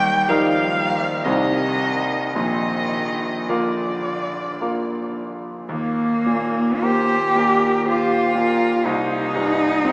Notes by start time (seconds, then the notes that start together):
Already playing: D#2 D#3 G3 G5
0.29 F3 G3 D#4 A#4 F5
1.24 C2 C3 D#3 G3 D#4 C5 D#5
2.35 A#1 A#2 D#3 D#5
3.49 D3 A#3 F4 D5 F5
4.61 A#3 F4 F5
5.69 D#2 A#3
6.26 A#2
6.82 A#3 G4 C5
7.35 A#2 A#4
7.85 F4 G4 C5
8.35 A#2 A#4
8.85 C2 D#4 C5
9.34 G2 G#4
9.84 C4 G4